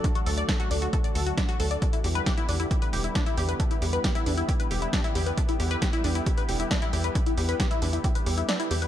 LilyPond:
<<
  \new Staff \with { instrumentName = "Synth arpeggio sound" } { \time 4/4 \key e \minor \tempo 4 = 135 d'16 fis'16 a'16 d''16 a'16 fis'16 d'16 fis'16 a'16 d''16 a'16 fis'16 d'16 fis'16 a'16 d''16 | d'16 e'16 g'16 b'16 g'16 e'16 d'16 e'16 g'16 b'16 g'16 e'16 d'16 e'16 g'16 b'16 | d'16 e'16 g'16 b'16 g'16 e'16 d'16 e'16 g'16 b'16 g'16 e'16 d'16 e'16 g'16 b'16 | d'16 e'16 g'16 b'16 g'16 e'16 d'16 e'16 g'16 b'16 g'16 e'16 d'16 e'16 g'16 b'16 |
d'16 e'16 g'16 b'16 g'16 e'16 d'16 e'16 g'16 b'16 g'16 e'16 d'16 e'16 g'16 b'16 | }
  \new Staff \with { instrumentName = "Analog synth pad" } { \time 4/4 \key e \minor << { <fis a fis' a'>1 | <g b e' g'>1~ | <g b e' g'>1~ | <g b e' g'>1~ |
<g b e' g'>1 | } \\ { d1~ | d1~ | d1~ | d1~ |
d1 | } >> }
  \new Staff \with { instrumentName = "Analog synth bass" } { \clef bass \time 4/4 \key e \minor r8 d,8 r8 d,8 r8 d,8 r8 d,8 | r8 e,8 r8 e,8 r8 e,,8 r8 e,8 | r8 e,8 r8 e,8 r8 e,,8 r8 e,8 | r8 e,8 r8 e,8 r8 e,,8 r8 e,8 |
r8 e,8 r8 e,8 r8 e,8 r8 e,8 | }
  \new DrumStaff \with { instrumentName = "Drums" } \drummode { \time 4/4 <hh bd>16 hh16 hho16 hh16 <hh bd sn>16 hh16 hho16 hh16 <hh bd>16 hh16 hho16 hh16 <hh bd sn>16 hh16 hho16 hh16 | <hh bd>16 hh16 hho16 hh16 <hh bd sn>16 hh16 hho16 hh16 <hh bd>16 hh16 hho16 hh16 <hh bd sn>16 hh16 hho16 hh16 | <hh bd>16 hh16 hho16 hh16 <hh bd sn>16 hh16 hho16 hh16 <hh bd>16 hh16 hho16 hh16 <hh bd sn>16 hh16 hho16 hh16 | <hh bd>16 hh16 hho16 hh16 <hh bd sn>16 hh16 hho16 hh16 <hh bd>16 hh16 hho16 hh16 <hh bd sn>16 hh16 hho16 hh16 |
<hh bd>16 hh16 hho16 hh16 <hh bd sn>16 hh16 hho16 hh16 <hh bd>16 hh16 hho16 hh16 <hh sn>16 hh16 hho16 hh16 | }
>>